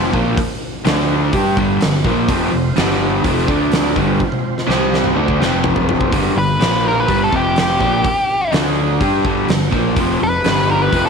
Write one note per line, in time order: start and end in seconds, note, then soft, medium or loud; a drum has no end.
0.00 0.12 F2 medium
0.00 0.12 C3 loud
0.00 0.13 F3 medium
0.13 0.36 A#1 loud
0.13 0.36 A#2 medium
0.13 0.37 F3 loud
0.13 0.37 A#3 medium
0.13 kick medium
0.37 kick loud
0.37 open hi-hat medium
0.85 1.30 D2 medium
0.85 1.32 D3 loud
0.85 1.32 A3 loud
0.85 1.33 D4 loud
0.85 snare loud
0.85 open hi-hat medium
0.99 snare soft
1.33 1.55 G2 medium
1.33 1.56 G3 loud
1.33 1.56 D4 medium
1.33 1.57 G4 medium
1.33 kick loud
1.33 open hi-hat medium
1.57 1.79 G1 medium
1.57 1.80 G2 medium
1.57 1.80 D3 loud
1.57 1.80 G3 loud
1.57 kick loud
1.81 2.03 G1 medium
1.81 2.00 G2 medium
1.81 2.00 D3 medium
1.81 snare loud
1.81 open hi-hat medium
2.05 2.27 A#1 loud
2.05 2.28 A#2 medium
2.05 2.29 F3 medium
2.05 2.29 A#3 loud
2.05 kick loud
2.27 2.51 F1 loud
2.27 2.51 F2 medium
2.27 2.51 C3 medium
2.27 2.76 F3 medium
2.27 2.52 F3 loud
2.27 2.76 C4 medium
2.27 2.75 F4 medium
2.27 2.75 C5 medium
2.27 kick loud
2.27 open hi-hat medium
2.52 2.75 F1 medium
2.52 2.72 F2 medium
2.52 2.72 C3 medium
2.75 3.21 G1 medium
2.75 3.23 G2 medium
2.75 3.24 D3 loud
2.75 3.23 G3 medium
2.75 3.24 G3 loud
2.75 3.24 D4 medium
2.75 3.23 G4 medium
2.75 3.24 D5 medium
2.75 snare loud
2.75 open hi-hat medium
2.91 snare soft
3.24 3.47 F1 medium
3.24 3.47 F2 medium
3.24 3.47 C3 loud
3.24 3.48 F3 loud
3.24 kick medium
3.24 open hi-hat medium
3.38 snare soft
3.46 3.93 D2 loud
3.46 3.95 D3 loud
3.46 3.95 A3 medium
3.46 3.96 A3 loud
3.46 3.95 D4 medium
3.46 3.96 D4 loud
3.46 3.95 A4 medium
3.46 3.95 D5 medium
3.46 kick medium
3.72 snare loud
3.72 open hi-hat medium
3.95 4.19 G1 loud
3.95 4.19 G2 medium
3.95 4.20 D3 loud
3.95 4.68 F3 medium
3.95 4.20 G3 loud
3.95 4.67 C4 medium
3.95 4.68 F4 medium
3.95 4.67 C5 medium
3.95 kick medium
4.20 kick medium
4.32 high tom medium
4.58 snare medium
4.67 5.13 C2 medium
4.67 5.15 C3 loud
4.67 5.15 G3 loud
4.67 5.16 G3 medium
4.67 5.15 C4 loud
4.67 5.16 C4 medium
4.67 5.16 G4 medium
4.67 5.16 C5 medium
4.67 snare medium
4.94 snare medium
5.04 mid tom medium
5.15 5.39 D2 loud
5.15 5.39 D3 medium
5.15 5.32 F#3 medium
5.15 5.39 A3 loud
5.15 5.32 C#4 medium
5.15 5.40 D4 medium
5.15 5.32 F#4 medium
5.15 5.32 C#5 medium
5.28 6.11 F3 medium
5.28 6.11 C4 medium
5.28 6.11 C5 medium
5.28 kick medium
5.32 6.11 F4 medium
5.40 6.08 F1 loud
5.40 6.11 F2 medium
5.40 6.12 C3 loud
5.40 6.12 F3 loud
5.40 snare medium
5.64 floor tom loud
5.76 floor tom medium
5.89 floor tom medium
6.01 kick medium
6.12 6.35 G1 medium
6.12 6.35 G2 medium
6.12 6.36 D3 medium
6.12 6.36 G3 medium
6.12 kick loud
6.12 open hi-hat medium
6.36 6.58 G1 medium
6.36 6.55 G2 medium
6.36 6.56 D3 medium
6.36 6.84 B4 medium
6.60 7.05 A#1 medium
6.60 7.07 A#2 medium
6.60 7.08 F3 loud
6.60 7.08 A#3 loud
6.60 snare loud
6.60 open hi-hat medium
6.88 7.00 A#4 medium
7.00 7.21 B4 medium
7.08 7.31 G1 medium
7.08 7.31 G2 medium
7.08 7.32 D3 medium
7.08 7.32 G3 medium
7.08 kick medium
7.08 open hi-hat soft
7.24 7.34 A4 medium
7.32 7.77 F1 medium
7.32 7.79 F2 medium
7.32 7.79 C3 medium
7.32 7.79 F3 loud
7.32 kick medium
7.36 7.57 G4 medium
7.56 snare loud
7.56 open hi-hat medium
7.61 8.52 G4 medium
7.80 8.03 A#1 loud
7.80 8.03 A#2 medium
7.80 8.04 F3 medium
7.80 8.04 A#3 medium
7.80 kick medium
8.04 kick loud
8.04 open hi-hat medium
8.52 8.97 D2 medium
8.52 9.00 D3 loud
8.52 9.00 A3 medium
8.52 9.00 D4 loud
8.52 snare loud
8.52 open hi-hat medium
8.66 snare soft
9.00 9.23 G2 medium
9.00 9.24 G3 medium
9.00 9.24 D4 loud
9.00 9.24 G4 loud
9.00 kick loud
9.00 open hi-hat soft
9.25 9.47 G1 medium
9.25 9.47 G2 medium
9.25 9.47 D3 medium
9.25 9.48 G3 medium
9.25 kick loud
9.48 9.71 G1 medium
9.48 9.68 G2 medium
9.48 9.68 D3 medium
9.48 snare loud
9.48 open hi-hat medium
9.72 9.95 A#1 medium
9.72 9.96 A#2 medium
9.72 9.96 F3 loud
9.72 9.96 A#3 loud
9.72 kick medium
9.96 10.19 F1 medium
9.96 10.19 F2 medium
9.96 10.20 C3 medium
9.96 10.20 F3 loud
9.96 kick loud
9.96 open hi-hat medium
10.21 10.43 F1 medium
10.21 10.40 F2 medium
10.21 10.40 C3 medium
10.21 10.69 B4 loud
10.44 10.90 G1 medium
10.44 10.91 G2 medium
10.44 10.92 D3 medium
10.44 10.93 G3 loud
10.44 snare loud
10.44 open hi-hat medium
10.58 snare soft
10.71 10.82 A#4 medium
10.82 11.05 B4 medium
10.92 11.09 F1 medium
10.92 11.09 F2 medium
10.92 11.09 C3 medium
10.92 11.09 F3 medium
10.92 kick loud
10.92 open hi-hat medium
11.06 11.09 A4 medium
11.06 snare soft